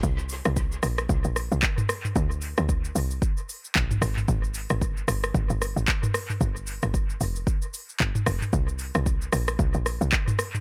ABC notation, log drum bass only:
X:1
M:4/4
L:1/16
Q:"Swing 16ths" 1/4=113
K:Bb
V:1 name="Log drum bass" clef=bass
C,,3 C,,3 B,,,2 C,, B,,,2 C,, z4 | D,,3 D,,3 C,,2 z4 B,,,2 _A,,,2 | _A,,,3 A,,,3 G,,,2 A,,, G,,,2 A,,, z4 | G,,,3 G,,,3 F,,,2 z4 G,,, z F,,, z |
C,,3 C,,3 B,,,2 C,, B,,,2 C,, z4 |]